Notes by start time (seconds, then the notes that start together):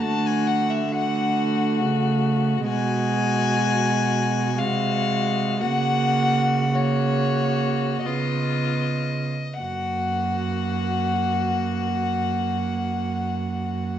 0.03 D3 A3 F#4 A5
0.26 G#5
0.47 F#5
0.71 E5
0.92 A3 F#4 F#5
1.79 C#3
2.67 B2 G#3 F#4 G#5
4.58 C3 G#3 F#4 F5
5.61 C#3 A#3 F#4 F#5
6.74 A#3 F#4 C#5
8.04 C#3 B3 F4 D#5
9.60 F#2 A#3 F#4 F#5